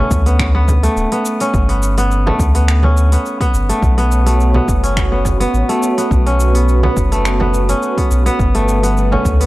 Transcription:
0.00 0.83 A3 medium
0.00 0.26 B3 medium
0.00 1.40 C#4 medium
0.11 0.88 D2 medium
0.11 kick loud
0.11 cabasa medium
0.26 0.54 B3 medium
0.26 open hi-hat medium
0.26 cabasa soft
0.39 finger snap medium
0.39 kick loud
0.39 cabasa soft
0.55 1.12 B3 loud
0.68 kick medium
0.68 frame drum medium
0.68 cabasa medium
0.83 2.26 A3 medium
0.83 open hi-hat medium
0.83 cabasa soft
0.96 1.06 D1 medium
0.96 cabasa soft
1.12 1.69 B3 medium
1.12 open hi-hat soft
1.25 cabasa medium
1.40 2.83 C#4 medium
1.40 open hi-hat soft
1.40 cabasa soft
1.54 2.31 G1 loud
1.54 kick loud
1.54 cabasa soft
1.69 1.97 B3 medium
1.69 open hi-hat soft
1.82 cabasa medium
1.98 2.55 B3 medium
1.98 open hi-hat soft
1.98 cabasa soft
2.11 cabasa soft
2.26 3.69 A3 medium
2.26 frame drum medium
2.39 3.17 D2 medium
2.39 kick loud
2.39 cabasa medium
2.55 3.12 B3 medium
2.55 open hi-hat medium
2.55 cabasa soft
2.68 finger snap medium
2.68 cabasa soft
2.83 4.58 C#4 medium
2.83 frame drum medium
2.97 cabasa medium
3.12 3.40 B3 medium
3.12 open hi-hat soft
3.12 cabasa soft
3.26 cabasa soft
3.41 3.97 B3 loud
3.41 kick loud
3.41 open hi-hat soft
3.54 3.72 G1 medium
3.54 cabasa medium
3.69 4.26 A3 medium
3.69 open hi-hat soft
3.69 cabasa soft
3.82 4.60 B1 loud
3.82 8.36 B3 medium
3.82 8.36 F#4 medium
3.82 6.09 C#5 medium
3.82 kick loud
3.82 cabasa soft
3.98 4.54 B3 loud
3.98 open hi-hat soft
4.12 cabasa medium
4.26 5.69 A3 medium
4.26 open hi-hat medium
4.26 cabasa soft
4.40 cabasa soft
4.54 5.11 B3 medium
4.54 frame drum medium
4.68 5.45 F#1 medium
4.68 kick loud
4.68 cabasa medium
4.84 6.26 C#4 medium
4.84 open hi-hat medium
4.84 cabasa soft
4.97 finger snap medium
4.97 kick loud
4.97 cabasa soft
5.12 5.40 B3 medium
5.25 kick medium
5.25 frame drum medium
5.25 cabasa medium
5.40 5.97 B3 medium
5.40 open hi-hat medium
5.40 cabasa soft
5.54 5.63 A1 medium
5.54 cabasa soft
5.69 7.12 A3 medium
5.69 open hi-hat soft
5.83 cabasa medium
5.98 6.54 B3 medium
5.98 open hi-hat medium
5.98 cabasa soft
6.11 6.88 B1 loud
6.11 9.46 B4 medium
6.11 kick loud
6.11 cabasa soft
6.26 7.69 C#4 medium
6.26 open hi-hat soft
6.40 cabasa medium
6.55 6.83 B3 medium
6.55 open hi-hat medium
6.55 cabasa soft
6.68 cabasa soft
6.83 7.40 B3 medium
6.83 frame drum medium
6.97 7.74 F#1 medium
6.97 kick loud
6.97 cabasa medium
7.12 8.54 A3 medium
7.12 open hi-hat medium
7.12 cabasa soft
7.25 finger snap medium
7.25 cabasa soft
7.40 7.97 B3 medium
7.40 frame drum medium
7.54 cabasa medium
7.69 9.11 C#4 medium
7.69 open hi-hat medium
7.69 cabasa soft
7.82 cabasa soft
7.98 8.25 B3 medium
7.98 kick medium
7.98 open hi-hat soft
8.11 8.29 B1 medium
8.11 cabasa medium
8.26 8.83 B3 loud
8.26 open hi-hat medium
8.26 cabasa soft
8.39 9.17 G1 loud
8.39 9.46 D3 medium
8.39 9.46 G3 medium
8.39 9.46 A4 medium
8.39 kick loud
8.39 cabasa soft
8.55 9.46 A3 medium
8.55 open hi-hat soft
8.68 cabasa medium
8.83 9.40 B3 medium
8.83 open hi-hat medium
8.83 cabasa soft
8.97 cabasa soft
9.12 9.46 C#4 medium
9.12 frame drum medium
9.25 9.46 D2 medium
9.25 kick loud
9.25 cabasa medium
9.41 9.46 B3 medium
9.41 open hi-hat medium
9.41 cabasa soft

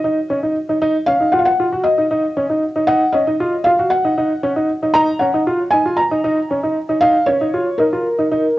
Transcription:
0.00 0.51 D#5 loud
0.04 0.17 D#4 medium
0.30 0.37 C#4 medium
0.43 0.56 D#4 medium
0.69 0.76 D#4 medium
0.82 0.95 D#4 loud
1.06 1.14 C#4 medium
1.06 1.34 F5 loud
1.20 1.27 D#4 medium
1.32 1.47 F4 medium
1.32 1.40 F#5 medium
1.39 1.47 F5 medium
1.45 1.85 F#5 loud
1.60 1.66 F4 medium
1.72 1.86 F#4 medium
1.84 2.58 D#5 medium
1.98 2.05 D#4 medium
2.11 2.24 D#4 medium
2.37 2.44 C#4 medium
2.50 2.63 D#4 medium
2.76 2.82 D#4 medium
2.87 3.02 D#4 loud
2.87 3.15 F#5 loud
3.13 3.21 C#4 medium
3.13 3.67 D#5 loud
3.27 3.34 D#4 medium
3.40 3.54 F4 medium
3.64 3.73 F4 medium
3.64 3.92 F5 loud
3.79 3.92 F#4 medium
3.90 4.65 F#5 loud
4.05 4.11 D#4 medium
4.18 4.31 D#4 medium
4.43 4.50 C#4 medium
4.56 4.70 D#4 medium
4.83 4.89 D#4 medium
4.94 5.08 D#4 loud
4.94 5.21 A#5 loud
5.19 5.27 C#4 medium
5.19 5.74 F#5 medium
5.34 5.41 D#4 medium
5.47 5.60 F4 medium
5.70 5.80 D#4 medium
5.70 5.98 G#5 loud
5.86 5.99 F4 medium
5.97 6.71 A#5 loud
6.11 6.18 D#4 medium
6.24 6.37 D#4 medium
6.51 6.57 C#4 medium
6.63 6.77 D#4 medium
6.89 6.96 D#4 medium
7.01 7.16 D#4 loud
7.01 7.28 F5 loud
7.26 7.35 C#4 medium
7.26 7.81 C#5 loud
7.41 7.48 D#4 medium
7.54 7.67 F4 medium
7.78 7.86 D#4 medium
7.78 8.59 A#4 medium
7.93 8.06 F4 medium
8.19 8.25 D#4 medium
8.32 8.45 D#4 medium

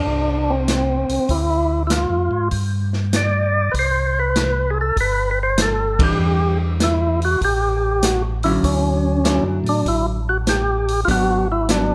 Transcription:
0.00 0.52 D4 medium
0.07 1.05 C2 medium
0.50 1.33 C4 medium
0.68 snare medium
0.68 closed hi-hat medium
1.09 1.19 C2 soft
1.09 open hi-hat soft
1.29 2.07 D2 medium
1.29 1.83 E4 medium
1.29 kick soft
1.29 open hi-hat soft
1.87 1.91 E4 medium
1.87 snare medium
1.87 closed hi-hat medium
1.92 2.48 F4 medium
2.10 2.29 F2 medium
2.31 2.50 G#2 medium
2.51 3.70 G2 medium
2.51 kick soft
2.51 open hi-hat soft
2.93 snare soft
3.13 3.73 D5 medium
3.13 snare medium
3.13 closed hi-hat medium
3.71 4.92 C2 medium
3.71 3.75 B4 medium
3.71 kick soft
3.71 open hi-hat soft
3.79 4.19 C5 medium
4.19 4.71 B4 medium
4.36 snare medium
4.36 closed hi-hat soft
4.70 4.78 G#4 medium
4.81 4.97 A4 medium
4.96 6.14 G1 medium
4.96 kick soft
4.96 open hi-hat soft
5.01 5.30 B4 medium
5.31 5.39 B4 medium
5.43 5.61 C5 medium
5.58 snare medium
5.58 closed hi-hat medium
5.62 6.02 A4 medium
5.99 6.76 E3 medium
5.99 6.76 G3 medium
5.99 6.76 D4 medium
5.99 kick medium
5.99 ride medium
6.04 6.58 G4 medium
6.18 7.37 E2 medium
6.80 7.20 E4 medium
6.80 snare medium
6.80 closed hi-hat medium
7.22 7.41 F#4 medium
7.22 open hi-hat soft
7.41 8.59 A1 medium
7.41 8.06 G4 loud
7.41 kick soft
7.41 open hi-hat soft
8.03 8.22 F#4 medium
8.03 snare medium
8.03 closed hi-hat medium
8.43 9.21 D3 medium
8.43 9.21 F#3 medium
8.43 9.21 C#4 medium
8.43 8.53 E4 medium
8.43 9.21 E4 medium
8.43 open hi-hat soft
8.63 9.41 D2 medium
8.63 9.24 C#4 medium
8.63 kick soft
8.63 open hi-hat soft
9.24 10.18 D3 medium
9.24 10.19 F#3 medium
9.24 9.44 C#4 medium
9.24 10.19 E4 medium
9.24 snare medium
9.24 closed hi-hat soft
9.43 9.63 F#2 medium
9.64 9.83 A2 medium
9.64 open hi-hat soft
9.69 9.88 D4 medium
9.86 11.04 A1 medium
9.86 10.06 E4 medium
9.86 kick soft
9.86 open hi-hat soft
10.29 10.38 F#4 medium
10.47 11.01 G4 medium
10.47 snare medium
10.47 closed hi-hat medium
10.88 open hi-hat soft
11.05 11.95 G#1 medium
11.05 11.45 F#3 medium
11.05 11.45 B3 medium
11.05 11.45 D4 medium
11.05 11.09 F4 medium
11.05 kick soft
11.05 open hi-hat soft
11.11 11.48 F#4 medium
11.52 11.71 E4 medium
11.69 11.95 F#3 soft
11.69 11.95 B3 medium
11.69 11.95 D4 medium
11.69 snare medium
11.69 closed hi-hat soft

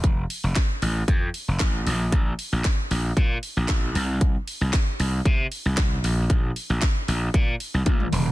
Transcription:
0.04 0.24 F1 loud
0.04 kick loud
0.04 closed hi-hat medium
0.30 open hi-hat medium
0.44 0.53 F1 loud
0.56 kick loud
0.56 snare medium
0.56 clap loud
0.56 closed hi-hat medium
0.82 1.02 A1 medium
0.82 open hi-hat medium
1.08 1.28 F2 loud
1.08 kick loud
1.08 closed hi-hat medium
1.34 open hi-hat medium
1.48 1.58 F1 medium
1.60 1.81 A1 medium
1.60 kick loud
1.60 snare medium
1.60 clap loud
1.60 closed hi-hat medium
1.86 2.07 A#1 loud
1.86 open hi-hat medium
2.12 kick loud
2.12 closed hi-hat medium
2.39 open hi-hat medium
2.52 2.62 A#1 loud
2.64 kick loud
2.64 snare medium
2.64 clap loud
2.64 closed hi-hat medium
2.91 3.11 A#1 medium
2.91 open hi-hat medium
3.17 3.37 A#2 loud
3.17 kick loud
3.17 closed hi-hat medium
3.43 open hi-hat medium
3.57 3.66 A#1 medium
3.68 kick loud
3.68 snare medium
3.68 clap loud
3.68 closed hi-hat medium
3.95 4.36 C2 loud
3.95 open hi-hat medium
4.21 kick loud
4.21 closed hi-hat medium
4.48 open hi-hat medium
4.61 4.71 C2 loud
4.73 kick loud
4.73 snare medium
4.73 clap loud
4.73 closed hi-hat medium
5.00 5.20 C2 medium
5.00 open hi-hat medium
5.25 5.46 C3 loud
5.25 kick loud
5.25 closed hi-hat medium
5.52 open hi-hat medium
5.66 5.75 C2 loud
5.77 kick loud
5.77 snare medium
5.77 clap loud
5.77 closed hi-hat medium
6.04 6.24 A#1 loud
6.04 open hi-hat medium
6.30 kick loud
6.30 closed hi-hat medium
6.56 open hi-hat medium
6.70 6.79 A#1 loud
6.82 kick loud
6.82 snare medium
6.82 clap loud
6.82 closed hi-hat medium
7.08 7.28 A#1 medium
7.08 open hi-hat medium
7.34 7.54 A#2 loud
7.34 kick loud
7.34 closed hi-hat medium
7.60 open hi-hat medium
7.74 7.84 C2 medium
7.86 kick loud
7.86 closed hi-hat medium
7.86 high tom medium
8.00 mid tom medium
8.12 8.32 E1 loud
8.12 mid tom medium
8.12 open hi-hat medium
8.26 floor tom medium

